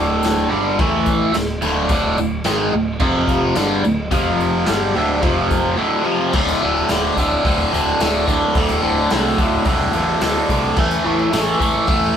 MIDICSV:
0, 0, Header, 1, 4, 480
1, 0, Start_track
1, 0, Tempo, 555042
1, 1644, Time_signature, 4, 2, 24, 8
1, 10523, End_track
2, 0, Start_track
2, 0, Title_t, "Overdriven electric guitar"
2, 0, Program_c, 0, 29
2, 0, Note_on_c, 0, 38, 96
2, 0, Note_on_c, 0, 45, 118
2, 0, Note_on_c, 0, 50, 106
2, 418, Note_off_c, 0, 38, 0
2, 421, Note_on_c, 0, 43, 88
2, 426, Note_off_c, 0, 50, 0
2, 433, Note_off_c, 0, 45, 0
2, 437, Note_on_c, 0, 50, 79
2, 442, Note_on_c, 0, 55, 86
2, 665, Note_off_c, 0, 43, 0
2, 673, Note_off_c, 0, 50, 0
2, 675, Note_off_c, 0, 55, 0
2, 680, Note_on_c, 0, 45, 85
2, 690, Note_on_c, 0, 52, 85
2, 696, Note_on_c, 0, 57, 94
2, 1147, Note_off_c, 0, 45, 0
2, 1154, Note_off_c, 0, 52, 0
2, 1157, Note_on_c, 0, 38, 61
2, 1157, Note_on_c, 0, 45, 75
2, 1163, Note_off_c, 0, 57, 0
2, 1352, Note_off_c, 0, 38, 0
2, 1352, Note_off_c, 0, 45, 0
2, 1401, Note_on_c, 0, 38, 104
2, 1413, Note_on_c, 0, 45, 112
2, 1419, Note_on_c, 0, 50, 99
2, 1627, Note_off_c, 0, 38, 0
2, 1638, Note_on_c, 0, 38, 94
2, 1639, Note_off_c, 0, 45, 0
2, 1644, Note_off_c, 0, 50, 0
2, 1649, Note_on_c, 0, 45, 103
2, 1659, Note_on_c, 0, 50, 109
2, 1874, Note_off_c, 0, 38, 0
2, 1877, Note_off_c, 0, 45, 0
2, 1884, Note_off_c, 0, 50, 0
2, 1886, Note_on_c, 0, 38, 72
2, 1888, Note_on_c, 0, 45, 73
2, 2077, Note_off_c, 0, 38, 0
2, 2078, Note_off_c, 0, 45, 0
2, 2116, Note_on_c, 0, 44, 101
2, 2126, Note_on_c, 0, 51, 104
2, 2129, Note_on_c, 0, 56, 104
2, 2353, Note_off_c, 0, 44, 0
2, 2358, Note_off_c, 0, 51, 0
2, 2360, Note_off_c, 0, 56, 0
2, 2361, Note_on_c, 0, 38, 66
2, 2369, Note_on_c, 0, 45, 61
2, 2555, Note_off_c, 0, 38, 0
2, 2559, Note_off_c, 0, 45, 0
2, 2598, Note_on_c, 0, 41, 102
2, 2601, Note_on_c, 0, 48, 102
2, 2612, Note_on_c, 0, 53, 87
2, 3074, Note_off_c, 0, 41, 0
2, 3076, Note_off_c, 0, 48, 0
2, 3079, Note_on_c, 0, 43, 91
2, 3081, Note_off_c, 0, 53, 0
2, 3085, Note_on_c, 0, 50, 96
2, 3087, Note_on_c, 0, 55, 102
2, 3315, Note_off_c, 0, 43, 0
2, 3317, Note_off_c, 0, 50, 0
2, 3319, Note_off_c, 0, 55, 0
2, 3322, Note_on_c, 0, 45, 77
2, 3324, Note_on_c, 0, 38, 77
2, 3515, Note_off_c, 0, 45, 0
2, 3516, Note_off_c, 0, 38, 0
2, 3553, Note_on_c, 0, 41, 92
2, 3557, Note_on_c, 0, 48, 111
2, 3569, Note_on_c, 0, 53, 108
2, 4024, Note_off_c, 0, 41, 0
2, 4026, Note_off_c, 0, 48, 0
2, 4028, Note_on_c, 0, 43, 94
2, 4029, Note_on_c, 0, 50, 90
2, 4037, Note_off_c, 0, 53, 0
2, 4041, Note_on_c, 0, 55, 124
2, 4268, Note_off_c, 0, 43, 0
2, 4269, Note_off_c, 0, 50, 0
2, 4275, Note_off_c, 0, 55, 0
2, 4277, Note_on_c, 0, 38, 92
2, 4281, Note_on_c, 0, 45, 82
2, 4294, Note_on_c, 0, 50, 88
2, 4505, Note_off_c, 0, 38, 0
2, 4509, Note_on_c, 0, 41, 86
2, 4510, Note_off_c, 0, 45, 0
2, 4513, Note_on_c, 0, 48, 89
2, 4516, Note_off_c, 0, 50, 0
2, 4519, Note_on_c, 0, 53, 100
2, 4983, Note_off_c, 0, 41, 0
2, 4987, Note_on_c, 0, 38, 84
2, 4991, Note_off_c, 0, 48, 0
2, 4994, Note_off_c, 0, 53, 0
2, 4994, Note_on_c, 0, 45, 91
2, 5000, Note_on_c, 0, 50, 97
2, 5213, Note_off_c, 0, 38, 0
2, 5217, Note_on_c, 0, 41, 96
2, 5225, Note_off_c, 0, 45, 0
2, 5229, Note_on_c, 0, 48, 98
2, 5231, Note_off_c, 0, 50, 0
2, 5234, Note_on_c, 0, 53, 104
2, 5462, Note_off_c, 0, 41, 0
2, 5468, Note_off_c, 0, 48, 0
2, 5471, Note_off_c, 0, 53, 0
2, 5474, Note_on_c, 0, 38, 92
2, 5483, Note_on_c, 0, 45, 117
2, 5492, Note_on_c, 0, 50, 115
2, 5713, Note_off_c, 0, 45, 0
2, 5719, Note_off_c, 0, 38, 0
2, 5722, Note_on_c, 0, 38, 82
2, 5724, Note_on_c, 0, 45, 96
2, 5734, Note_off_c, 0, 50, 0
2, 5738, Note_on_c, 0, 50, 90
2, 5959, Note_off_c, 0, 38, 0
2, 5959, Note_off_c, 0, 45, 0
2, 5962, Note_on_c, 0, 38, 86
2, 5970, Note_on_c, 0, 45, 101
2, 5973, Note_off_c, 0, 50, 0
2, 5976, Note_on_c, 0, 50, 96
2, 6201, Note_off_c, 0, 38, 0
2, 6204, Note_off_c, 0, 45, 0
2, 6205, Note_on_c, 0, 38, 84
2, 6210, Note_off_c, 0, 50, 0
2, 6213, Note_on_c, 0, 50, 100
2, 6214, Note_on_c, 0, 45, 87
2, 6416, Note_off_c, 0, 38, 0
2, 6426, Note_on_c, 0, 38, 90
2, 6427, Note_off_c, 0, 45, 0
2, 6432, Note_off_c, 0, 50, 0
2, 6437, Note_on_c, 0, 45, 106
2, 6443, Note_on_c, 0, 50, 106
2, 6656, Note_off_c, 0, 38, 0
2, 6667, Note_on_c, 0, 38, 93
2, 6668, Note_off_c, 0, 45, 0
2, 6675, Note_off_c, 0, 50, 0
2, 6678, Note_on_c, 0, 45, 93
2, 6685, Note_on_c, 0, 50, 101
2, 6903, Note_off_c, 0, 38, 0
2, 6913, Note_on_c, 0, 38, 87
2, 6916, Note_off_c, 0, 45, 0
2, 6916, Note_off_c, 0, 50, 0
2, 6926, Note_on_c, 0, 45, 84
2, 6927, Note_on_c, 0, 50, 106
2, 7140, Note_off_c, 0, 38, 0
2, 7146, Note_off_c, 0, 45, 0
2, 7150, Note_on_c, 0, 38, 101
2, 7154, Note_off_c, 0, 50, 0
2, 7156, Note_on_c, 0, 45, 92
2, 7165, Note_on_c, 0, 50, 103
2, 7379, Note_off_c, 0, 38, 0
2, 7389, Note_off_c, 0, 45, 0
2, 7389, Note_on_c, 0, 38, 104
2, 7397, Note_off_c, 0, 50, 0
2, 7400, Note_on_c, 0, 45, 99
2, 7408, Note_on_c, 0, 50, 96
2, 7613, Note_off_c, 0, 38, 0
2, 7620, Note_off_c, 0, 45, 0
2, 7623, Note_on_c, 0, 38, 91
2, 7625, Note_off_c, 0, 50, 0
2, 7631, Note_on_c, 0, 45, 90
2, 7636, Note_on_c, 0, 50, 109
2, 7863, Note_off_c, 0, 38, 0
2, 7871, Note_off_c, 0, 45, 0
2, 7873, Note_on_c, 0, 38, 84
2, 7877, Note_off_c, 0, 50, 0
2, 7882, Note_on_c, 0, 45, 98
2, 7888, Note_on_c, 0, 50, 99
2, 8103, Note_off_c, 0, 38, 0
2, 8110, Note_off_c, 0, 45, 0
2, 8113, Note_on_c, 0, 38, 77
2, 8115, Note_off_c, 0, 50, 0
2, 8121, Note_on_c, 0, 45, 79
2, 8126, Note_on_c, 0, 50, 82
2, 8344, Note_off_c, 0, 38, 0
2, 8349, Note_off_c, 0, 45, 0
2, 8354, Note_on_c, 0, 38, 97
2, 8360, Note_on_c, 0, 45, 105
2, 8363, Note_off_c, 0, 50, 0
2, 8373, Note_on_c, 0, 50, 113
2, 8570, Note_off_c, 0, 38, 0
2, 8580, Note_off_c, 0, 45, 0
2, 8581, Note_on_c, 0, 38, 91
2, 8584, Note_off_c, 0, 50, 0
2, 8590, Note_on_c, 0, 45, 104
2, 8594, Note_on_c, 0, 50, 108
2, 8827, Note_off_c, 0, 38, 0
2, 8828, Note_off_c, 0, 45, 0
2, 8837, Note_on_c, 0, 38, 91
2, 8839, Note_on_c, 0, 45, 95
2, 8844, Note_off_c, 0, 50, 0
2, 8854, Note_on_c, 0, 50, 103
2, 9071, Note_off_c, 0, 38, 0
2, 9081, Note_on_c, 0, 38, 98
2, 9082, Note_off_c, 0, 45, 0
2, 9082, Note_off_c, 0, 50, 0
2, 9093, Note_on_c, 0, 45, 110
2, 9093, Note_on_c, 0, 50, 110
2, 9306, Note_off_c, 0, 38, 0
2, 9307, Note_off_c, 0, 45, 0
2, 9312, Note_off_c, 0, 50, 0
2, 9317, Note_on_c, 0, 45, 106
2, 9328, Note_on_c, 0, 52, 104
2, 9337, Note_on_c, 0, 57, 111
2, 9542, Note_off_c, 0, 45, 0
2, 9552, Note_on_c, 0, 45, 96
2, 9555, Note_off_c, 0, 57, 0
2, 9559, Note_off_c, 0, 52, 0
2, 9562, Note_on_c, 0, 52, 94
2, 9565, Note_on_c, 0, 57, 90
2, 9770, Note_off_c, 0, 45, 0
2, 9781, Note_on_c, 0, 45, 89
2, 9785, Note_off_c, 0, 52, 0
2, 9788, Note_off_c, 0, 57, 0
2, 9789, Note_on_c, 0, 52, 102
2, 9799, Note_on_c, 0, 57, 100
2, 10010, Note_off_c, 0, 45, 0
2, 10020, Note_on_c, 0, 45, 76
2, 10029, Note_off_c, 0, 52, 0
2, 10032, Note_on_c, 0, 52, 87
2, 10033, Note_off_c, 0, 57, 0
2, 10043, Note_on_c, 0, 57, 96
2, 10256, Note_off_c, 0, 45, 0
2, 10267, Note_on_c, 0, 45, 92
2, 10268, Note_off_c, 0, 52, 0
2, 10273, Note_off_c, 0, 57, 0
2, 10278, Note_on_c, 0, 52, 103
2, 10284, Note_on_c, 0, 57, 110
2, 10506, Note_off_c, 0, 45, 0
2, 10517, Note_off_c, 0, 52, 0
2, 10523, Note_off_c, 0, 57, 0
2, 10523, End_track
3, 0, Start_track
3, 0, Title_t, "Picked electric bass"
3, 0, Program_c, 1, 34
3, 0, Note_on_c, 1, 26, 101
3, 415, Note_off_c, 1, 26, 0
3, 453, Note_on_c, 1, 31, 91
3, 671, Note_off_c, 1, 31, 0
3, 688, Note_on_c, 1, 33, 98
3, 1133, Note_off_c, 1, 33, 0
3, 1169, Note_on_c, 1, 26, 83
3, 1390, Note_off_c, 1, 26, 0
3, 1403, Note_on_c, 1, 26, 103
3, 1627, Note_off_c, 1, 26, 0
3, 1639, Note_on_c, 1, 26, 105
3, 1865, Note_off_c, 1, 26, 0
3, 1884, Note_on_c, 1, 26, 77
3, 2108, Note_off_c, 1, 26, 0
3, 2121, Note_on_c, 1, 32, 88
3, 2346, Note_off_c, 1, 32, 0
3, 2361, Note_on_c, 1, 26, 75
3, 2586, Note_off_c, 1, 26, 0
3, 2597, Note_on_c, 1, 29, 98
3, 3047, Note_off_c, 1, 29, 0
3, 3078, Note_on_c, 1, 31, 108
3, 3304, Note_off_c, 1, 31, 0
3, 3327, Note_on_c, 1, 26, 83
3, 3549, Note_off_c, 1, 26, 0
3, 3563, Note_on_c, 1, 29, 115
3, 4010, Note_off_c, 1, 29, 0
3, 4056, Note_on_c, 1, 31, 92
3, 4273, Note_off_c, 1, 31, 0
3, 4295, Note_on_c, 1, 26, 86
3, 4513, Note_off_c, 1, 26, 0
3, 4525, Note_on_c, 1, 29, 90
3, 4971, Note_off_c, 1, 29, 0
3, 5483, Note_on_c, 1, 26, 110
3, 5655, Note_off_c, 1, 26, 0
3, 5734, Note_on_c, 1, 26, 95
3, 5902, Note_off_c, 1, 26, 0
3, 5972, Note_on_c, 1, 26, 92
3, 6141, Note_off_c, 1, 26, 0
3, 6204, Note_on_c, 1, 26, 85
3, 6375, Note_off_c, 1, 26, 0
3, 6446, Note_on_c, 1, 26, 83
3, 6617, Note_off_c, 1, 26, 0
3, 6689, Note_on_c, 1, 26, 92
3, 6859, Note_off_c, 1, 26, 0
3, 6924, Note_on_c, 1, 26, 97
3, 7268, Note_off_c, 1, 26, 0
3, 7397, Note_on_c, 1, 26, 99
3, 7570, Note_off_c, 1, 26, 0
3, 7648, Note_on_c, 1, 26, 92
3, 7818, Note_off_c, 1, 26, 0
3, 7891, Note_on_c, 1, 36, 91
3, 8060, Note_off_c, 1, 36, 0
3, 8118, Note_on_c, 1, 26, 80
3, 8291, Note_off_c, 1, 26, 0
3, 8355, Note_on_c, 1, 36, 100
3, 8529, Note_off_c, 1, 36, 0
3, 8597, Note_on_c, 1, 33, 98
3, 8770, Note_off_c, 1, 33, 0
3, 8838, Note_on_c, 1, 38, 97
3, 9011, Note_off_c, 1, 38, 0
3, 9076, Note_on_c, 1, 36, 94
3, 9250, Note_off_c, 1, 36, 0
3, 9318, Note_on_c, 1, 33, 111
3, 9491, Note_off_c, 1, 33, 0
3, 9560, Note_on_c, 1, 33, 90
3, 9732, Note_off_c, 1, 33, 0
3, 9800, Note_on_c, 1, 33, 91
3, 9972, Note_off_c, 1, 33, 0
3, 10038, Note_on_c, 1, 33, 90
3, 10211, Note_off_c, 1, 33, 0
3, 10278, Note_on_c, 1, 33, 97
3, 10451, Note_off_c, 1, 33, 0
3, 10523, End_track
4, 0, Start_track
4, 0, Title_t, "Drums"
4, 197, Note_on_c, 9, 54, 95
4, 211, Note_on_c, 9, 49, 67
4, 219, Note_on_c, 9, 38, 108
4, 283, Note_off_c, 9, 54, 0
4, 297, Note_off_c, 9, 49, 0
4, 305, Note_off_c, 9, 38, 0
4, 684, Note_on_c, 9, 49, 63
4, 685, Note_on_c, 9, 36, 119
4, 770, Note_off_c, 9, 49, 0
4, 771, Note_off_c, 9, 36, 0
4, 916, Note_on_c, 9, 54, 86
4, 923, Note_on_c, 9, 36, 81
4, 1003, Note_off_c, 9, 54, 0
4, 1010, Note_off_c, 9, 36, 0
4, 1159, Note_on_c, 9, 54, 94
4, 1161, Note_on_c, 9, 49, 63
4, 1169, Note_on_c, 9, 38, 117
4, 1246, Note_off_c, 9, 54, 0
4, 1248, Note_off_c, 9, 49, 0
4, 1256, Note_off_c, 9, 38, 0
4, 1400, Note_on_c, 9, 54, 76
4, 1486, Note_off_c, 9, 54, 0
4, 1634, Note_on_c, 9, 49, 56
4, 1636, Note_on_c, 9, 54, 84
4, 1639, Note_on_c, 9, 36, 106
4, 1720, Note_off_c, 9, 49, 0
4, 1723, Note_off_c, 9, 54, 0
4, 1726, Note_off_c, 9, 36, 0
4, 1884, Note_on_c, 9, 54, 83
4, 1971, Note_off_c, 9, 54, 0
4, 2111, Note_on_c, 9, 49, 51
4, 2118, Note_on_c, 9, 38, 112
4, 2126, Note_on_c, 9, 54, 89
4, 2197, Note_off_c, 9, 49, 0
4, 2205, Note_off_c, 9, 38, 0
4, 2212, Note_off_c, 9, 54, 0
4, 2591, Note_on_c, 9, 49, 59
4, 2597, Note_on_c, 9, 36, 114
4, 2678, Note_off_c, 9, 49, 0
4, 2683, Note_off_c, 9, 36, 0
4, 2835, Note_on_c, 9, 36, 84
4, 2843, Note_on_c, 9, 54, 79
4, 2921, Note_off_c, 9, 36, 0
4, 2930, Note_off_c, 9, 54, 0
4, 3073, Note_on_c, 9, 49, 68
4, 3080, Note_on_c, 9, 54, 94
4, 3081, Note_on_c, 9, 38, 110
4, 3159, Note_off_c, 9, 49, 0
4, 3166, Note_off_c, 9, 54, 0
4, 3167, Note_off_c, 9, 38, 0
4, 3326, Note_on_c, 9, 54, 70
4, 3412, Note_off_c, 9, 54, 0
4, 3556, Note_on_c, 9, 49, 64
4, 3557, Note_on_c, 9, 36, 105
4, 3562, Note_on_c, 9, 54, 81
4, 3643, Note_off_c, 9, 49, 0
4, 3644, Note_off_c, 9, 36, 0
4, 3648, Note_off_c, 9, 54, 0
4, 3809, Note_on_c, 9, 54, 71
4, 3895, Note_off_c, 9, 54, 0
4, 4032, Note_on_c, 9, 49, 65
4, 4040, Note_on_c, 9, 38, 122
4, 4046, Note_on_c, 9, 54, 88
4, 4119, Note_off_c, 9, 49, 0
4, 4127, Note_off_c, 9, 38, 0
4, 4132, Note_off_c, 9, 54, 0
4, 4286, Note_on_c, 9, 54, 25
4, 4372, Note_off_c, 9, 54, 0
4, 4518, Note_on_c, 9, 54, 28
4, 4520, Note_on_c, 9, 49, 62
4, 4523, Note_on_c, 9, 36, 119
4, 4605, Note_off_c, 9, 54, 0
4, 4606, Note_off_c, 9, 49, 0
4, 4609, Note_off_c, 9, 36, 0
4, 4761, Note_on_c, 9, 54, 80
4, 4762, Note_on_c, 9, 36, 84
4, 4847, Note_off_c, 9, 54, 0
4, 4848, Note_off_c, 9, 36, 0
4, 5475, Note_on_c, 9, 57, 121
4, 5480, Note_on_c, 9, 36, 114
4, 5487, Note_on_c, 9, 54, 35
4, 5562, Note_off_c, 9, 57, 0
4, 5567, Note_off_c, 9, 36, 0
4, 5573, Note_off_c, 9, 54, 0
4, 5608, Note_on_c, 9, 54, 82
4, 5695, Note_off_c, 9, 54, 0
4, 5848, Note_on_c, 9, 54, 31
4, 5935, Note_off_c, 9, 54, 0
4, 5953, Note_on_c, 9, 46, 65
4, 5961, Note_on_c, 9, 38, 127
4, 5965, Note_on_c, 9, 54, 106
4, 6039, Note_off_c, 9, 46, 0
4, 6047, Note_off_c, 9, 38, 0
4, 6051, Note_off_c, 9, 54, 0
4, 6201, Note_on_c, 9, 36, 78
4, 6206, Note_on_c, 9, 54, 85
4, 6287, Note_off_c, 9, 36, 0
4, 6292, Note_off_c, 9, 54, 0
4, 6443, Note_on_c, 9, 36, 115
4, 6444, Note_on_c, 9, 46, 63
4, 6457, Note_on_c, 9, 54, 31
4, 6529, Note_off_c, 9, 36, 0
4, 6531, Note_off_c, 9, 46, 0
4, 6543, Note_off_c, 9, 54, 0
4, 6575, Note_on_c, 9, 54, 33
4, 6662, Note_off_c, 9, 54, 0
4, 6694, Note_on_c, 9, 54, 86
4, 6780, Note_off_c, 9, 54, 0
4, 6921, Note_on_c, 9, 54, 95
4, 6922, Note_on_c, 9, 46, 69
4, 6930, Note_on_c, 9, 38, 116
4, 7008, Note_off_c, 9, 46, 0
4, 7008, Note_off_c, 9, 54, 0
4, 7016, Note_off_c, 9, 38, 0
4, 7160, Note_on_c, 9, 36, 77
4, 7167, Note_on_c, 9, 54, 86
4, 7246, Note_off_c, 9, 36, 0
4, 7253, Note_off_c, 9, 54, 0
4, 7276, Note_on_c, 9, 54, 26
4, 7362, Note_off_c, 9, 54, 0
4, 7392, Note_on_c, 9, 46, 61
4, 7397, Note_on_c, 9, 36, 109
4, 7407, Note_on_c, 9, 54, 32
4, 7479, Note_off_c, 9, 46, 0
4, 7484, Note_off_c, 9, 36, 0
4, 7493, Note_off_c, 9, 54, 0
4, 7514, Note_on_c, 9, 54, 77
4, 7600, Note_off_c, 9, 54, 0
4, 7759, Note_on_c, 9, 54, 26
4, 7846, Note_off_c, 9, 54, 0
4, 7872, Note_on_c, 9, 46, 71
4, 7873, Note_on_c, 9, 54, 87
4, 7880, Note_on_c, 9, 38, 112
4, 7959, Note_off_c, 9, 46, 0
4, 7959, Note_off_c, 9, 54, 0
4, 7966, Note_off_c, 9, 38, 0
4, 8115, Note_on_c, 9, 36, 92
4, 8118, Note_on_c, 9, 54, 68
4, 8202, Note_off_c, 9, 36, 0
4, 8204, Note_off_c, 9, 54, 0
4, 8239, Note_on_c, 9, 54, 29
4, 8326, Note_off_c, 9, 54, 0
4, 8345, Note_on_c, 9, 46, 67
4, 8353, Note_on_c, 9, 36, 127
4, 8368, Note_on_c, 9, 54, 27
4, 8431, Note_off_c, 9, 46, 0
4, 8439, Note_off_c, 9, 36, 0
4, 8454, Note_off_c, 9, 54, 0
4, 8479, Note_on_c, 9, 54, 31
4, 8565, Note_off_c, 9, 54, 0
4, 8589, Note_on_c, 9, 54, 76
4, 8675, Note_off_c, 9, 54, 0
4, 8829, Note_on_c, 9, 46, 70
4, 8831, Note_on_c, 9, 54, 97
4, 8837, Note_on_c, 9, 38, 122
4, 8916, Note_off_c, 9, 46, 0
4, 8918, Note_off_c, 9, 54, 0
4, 8924, Note_off_c, 9, 38, 0
4, 9074, Note_on_c, 9, 36, 76
4, 9080, Note_on_c, 9, 54, 83
4, 9161, Note_off_c, 9, 36, 0
4, 9166, Note_off_c, 9, 54, 0
4, 9199, Note_on_c, 9, 54, 29
4, 9285, Note_off_c, 9, 54, 0
4, 9309, Note_on_c, 9, 57, 97
4, 9314, Note_on_c, 9, 36, 119
4, 9323, Note_on_c, 9, 54, 33
4, 9395, Note_off_c, 9, 57, 0
4, 9401, Note_off_c, 9, 36, 0
4, 9410, Note_off_c, 9, 54, 0
4, 9433, Note_on_c, 9, 54, 83
4, 9520, Note_off_c, 9, 54, 0
4, 9678, Note_on_c, 9, 54, 31
4, 9765, Note_off_c, 9, 54, 0
4, 9796, Note_on_c, 9, 46, 62
4, 9801, Note_on_c, 9, 54, 102
4, 9804, Note_on_c, 9, 38, 119
4, 9883, Note_off_c, 9, 46, 0
4, 9887, Note_off_c, 9, 54, 0
4, 9890, Note_off_c, 9, 38, 0
4, 10036, Note_on_c, 9, 36, 86
4, 10045, Note_on_c, 9, 54, 81
4, 10122, Note_off_c, 9, 36, 0
4, 10132, Note_off_c, 9, 54, 0
4, 10267, Note_on_c, 9, 46, 64
4, 10275, Note_on_c, 9, 36, 124
4, 10287, Note_on_c, 9, 54, 31
4, 10353, Note_off_c, 9, 46, 0
4, 10362, Note_off_c, 9, 36, 0
4, 10374, Note_off_c, 9, 54, 0
4, 10412, Note_on_c, 9, 54, 35
4, 10498, Note_off_c, 9, 54, 0
4, 10523, End_track
0, 0, End_of_file